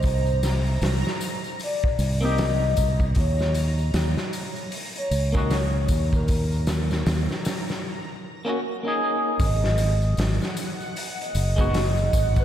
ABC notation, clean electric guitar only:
X:1
M:4/4
L:1/16
Q:"Swing 16ths" 1/4=77
K:D#phr
V:1 name="Clean electric guitar"
z8 z3 [_B,=C_E=G] z4 | z8 z3 [A,CDF] z4 | z8 z3 [A,CDF] z [A,CDG]3 | z8 z3 [G,B,DF] z4 |]